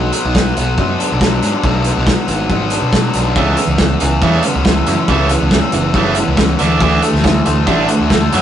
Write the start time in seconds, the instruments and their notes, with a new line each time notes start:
Already playing: picked electric bass B1, distorted electric guitar F#3 B3
0.13 distorted electric guitar B3, closed hi-hat
0.25 picked electric bass B1
0.35 distorted electric guitar F#3, kick, snare
0.56 picked electric bass B1, distorted electric guitar F#3, closed hi-hat
0.78 picked electric bass F#2, distorted electric guitar B3, kick
0.99 distorted electric guitar D4, closed hi-hat
1.12 picked electric bass B1
1.21 distorted electric guitar F#3, kick, snare
1.43 picked electric bass G#2, distorted electric guitar D4, closed hi-hat
1.64 picked electric bass B1, distorted electric guitar F#3, kick
1.84 distorted electric guitar B3, closed hi-hat
1.97 picked electric bass B1
2.07 distorted electric guitar F#3, kick, snare
2.28 picked electric bass G#1, distorted electric guitar F#3, closed hi-hat
2.50 picked electric bass G#1, distorted electric guitar B3, kick
2.70 distorted electric guitar D4, closed hi-hat
2.82 picked electric bass B2
2.92 distorted electric guitar F#3, kick, snare
3.14 picked electric bass B1, distorted electric guitar D4, snare, closed hi-hat
3.36 picked electric bass C#2, overdriven electric guitar C#3 E3 A3, distorted electric guitar E3, kick
3.57 overdriven electric guitar C#3 E3, distorted electric guitar B3, closed hi-hat
3.67 picked electric bass C#2
3.78 overdriven electric guitar C#3 E3, distorted electric guitar E3, kick, snare
4.00 picked electric bass C#2, overdriven electric guitar C#3 E3, distorted electric guitar E3, closed hi-hat
4.22 picked electric bass E2, overdriven electric guitar C#3 E3 A3, distorted electric guitar B3, kick
4.43 overdriven electric guitar C#3 E3, distorted electric guitar C#4, closed hi-hat
4.55 picked electric bass C#2
4.65 overdriven electric guitar C#3 E3, distorted electric guitar E3, kick, snare
4.87 picked electric bass F#2, overdriven electric guitar C#3 E3, distorted electric guitar C#4, snare, closed hi-hat
5.08 picked electric bass C#2, overdriven electric guitar C#3 E3 A3, distorted electric guitar E3, kick
5.29 overdriven electric guitar C#3 E3, distorted electric guitar B3, closed hi-hat
5.42 picked electric bass C#2
5.51 overdriven electric guitar C#3 E3, distorted electric guitar E3, kick, snare
5.72 picked electric bass F#1, overdriven electric guitar C#3 E3, distorted electric guitar E3, closed hi-hat
5.94 picked electric bass F#1, overdriven electric guitar C#3 E3 A3, distorted electric guitar B3, kick
6.15 overdriven electric guitar C#3 E3, distorted electric guitar C#4, closed hi-hat
6.28 picked electric bass C#2
6.37 overdriven electric guitar C#3 E3, distorted electric guitar E3, kick, snare
6.59 picked electric bass D2, overdriven electric guitar D3 A3 D4, distorted electric guitar E3, snare, closed hi-hat
6.80 picked electric bass D2, overdriven electric guitar D3 A3 D4, distorted electric guitar E3, kick
7.02 overdriven electric guitar D3 A3, distorted electric guitar A3, closed hi-hat
7.13 picked electric bass D2, snare
7.23 overdriven electric guitar D3 A3, distorted electric guitar E3, kick, snare
7.45 picked electric bass D2, overdriven electric guitar D3 A3, distorted electric guitar A3, closed hi-hat
7.67 picked electric bass A1, overdriven electric guitar D3 A3 D4, distorted electric guitar D4, kick
7.88 overdriven electric guitar D3 A3, distorted electric guitar F#4, closed hi-hat
8.00 picked electric bass D2
8.10 overdriven electric guitar D3 A3, distorted electric guitar A3, kick, snare
8.33 overdriven electric guitar F#2 C#3 F#3, picked electric bass F#2, distorted electric guitar E3, snare, closed hi-hat